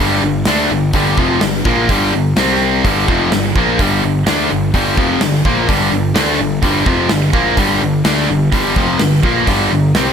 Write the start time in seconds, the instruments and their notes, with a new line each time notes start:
Already playing: overdriven electric guitar G2
0.00 picked electric bass G1, overdriven electric guitar D3 G3
0.22 picked electric bass G1, overdriven electric guitar G2 D3
0.45 picked electric bass D2, overdriven electric guitar D3 A3 D4, snare, open hi-hat
0.70 picked electric bass G1, overdriven electric guitar G2 D3
0.93 picked electric bass G1, overdriven electric guitar G2 D3 G3, kick, open hi-hat
1.18 picked electric bass F1, overdriven electric guitar F2 C3 F3, kick
1.41 picked electric bass G1, overdriven electric guitar G2 D3, snare, open hi-hat
1.64 picked electric bass A#1, overdriven electric guitar A#2 F3 A#3, kick
1.89 picked electric bass G1, overdriven electric guitar G2 D3 G3, kick, open hi-hat
2.13 picked electric bass G1, overdriven electric guitar G2 D3
2.36 picked electric bass C2, overdriven electric guitar C3 G3 C4, snare, open hi-hat
2.84 picked electric bass G1, overdriven electric guitar G2 D3 G3, kick, open hi-hat
3.08 picked electric bass F1, overdriven electric guitar F2 C3 F3, kick
3.32 picked electric bass G1, overdriven electric guitar G2 D3, snare, open hi-hat
3.55 picked electric bass A#1, overdriven electric guitar A#2 F3 A#3, kick
3.79 picked electric bass G1, overdriven electric guitar G2 D3 G3, kick, open hi-hat
4.03 picked electric bass G1, overdriven electric guitar G2 D3
4.26 picked electric bass D2, overdriven electric guitar D3 A3 D4, snare, open hi-hat
4.50 picked electric bass G1, overdriven electric guitar G2 D3
4.74 picked electric bass G1, overdriven electric guitar G2 D3 G3, kick, open hi-hat
4.97 picked electric bass F1, overdriven electric guitar F2 C3 F3, kick
5.21 picked electric bass G1, overdriven electric guitar G2 D3, snare, open hi-hat
5.45 picked electric bass A#1, overdriven electric guitar A#2 F3 A#3, kick
5.67 picked electric bass G1, overdriven electric guitar G2 D3 G3, kick, open hi-hat
5.92 picked electric bass G1, overdriven electric guitar G2 D3
6.14 picked electric bass D2, overdriven electric guitar D3 A3 D4, snare, open hi-hat
6.39 picked electric bass G1, overdriven electric guitar G2 D3
6.63 picked electric bass G1, overdriven electric guitar G2 D3 G3, kick, open hi-hat
6.86 picked electric bass F1, overdriven electric guitar F2 C3 F3, kick
7.09 picked electric bass G1, overdriven electric guitar G2 D3, snare, open hi-hat
7.33 picked electric bass A#1, overdriven electric guitar A#2 F3 A#3, kick
7.57 picked electric bass G1, overdriven electric guitar G2 D3 G3, kick, open hi-hat
7.82 picked electric bass G1, overdriven electric guitar G2 D3
8.04 picked electric bass D2, overdriven electric guitar D3 A3 D4, snare, open hi-hat
8.29 picked electric bass G1, overdriven electric guitar G2 D3
8.52 picked electric bass G1, overdriven electric guitar G2 D3 G3, kick, open hi-hat
8.76 picked electric bass F1, overdriven electric guitar F2 C3 F3, kick, snare
8.99 picked electric bass G1, overdriven electric guitar G2 D3, snare, open hi-hat
9.23 picked electric bass A#1, overdriven electric guitar A#2 F3 A#3, kick
9.47 picked electric bass G1, overdriven electric guitar G2 D3 G3, kick, open hi-hat
9.71 picked electric bass G1, overdriven electric guitar G2 D3
9.95 picked electric bass C2, overdriven electric guitar C3 G3 C4, snare, open hi-hat